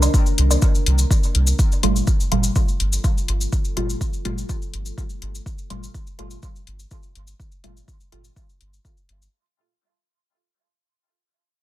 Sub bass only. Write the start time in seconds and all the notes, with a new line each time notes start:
0.38 C2
0.86 C2
1.35 C2
1.83 G1
2.32 G1
2.80 G1
3.28 G1
3.77 G1
4.25 G1
4.73 G1
5.22 G1
5.70 G1
6.19 G1
6.67 G1
7.15 G1
7.64 G1
8.12 G1
8.61 G1
9.09 G1